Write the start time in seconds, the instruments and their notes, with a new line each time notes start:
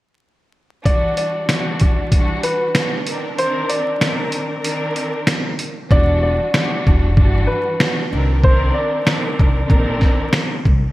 0.85 string section E3 G3 D4 F#4, upright piano D5, kick, closed hi-hat
1.17 upright piano D5, closed hi-hat
1.49 string section E3 G3 D4 F#4, snare, closed hi-hat
1.80 kick, closed hi-hat
2.12 string section E3 G3 D4 F#4, kick, closed hi-hat
2.43 upright piano B4, closed hi-hat
2.75 string section E3 G3 D4 F#4, snare, closed hi-hat
3.06 string section D#3 C4 D4 A#4, closed hi-hat
3.37 string section D#3 C4 D4 A#4, upright piano C5, closed hi-hat
3.69 upright piano D5, closed hi-hat
3.98 string section D#3 C4 D4 A#4, snare, closed hi-hat
4.02 snare
4.32 closed hi-hat
4.60 string section D#3 C4 D4 A#4
4.64 closed hi-hat
4.96 closed hi-hat
5.27 snare, closed hi-hat
5.59 closed hi-hat
5.90 upright bass E1, string section E3 G3 D4 F#4, upright piano D5, kick
6.23 upright piano D5
6.54 string section E3 G3 D4 F#4, snare
6.87 upright bass E1, kick
7.17 upright bass G1, string section E3 G3 D4 F#4, kick
7.47 upright piano B4
7.80 string section E3 G3 D4 F#4, snare
8.11 upright bass C2, string section D#3 C4 D4 A#4
8.42 string section D#3 C4 D4 A#4, upright piano C5, kick
8.74 upright piano D5
9.03 string section D#3 C4 D4 A#4, snare
9.08 snare
9.39 upright bass C2, kick
9.65 string section D#3 C4 D4 A#4
9.70 upright bass A#1, kick
10.01 kick, snare
10.33 snare
10.65 upright bass C2, kick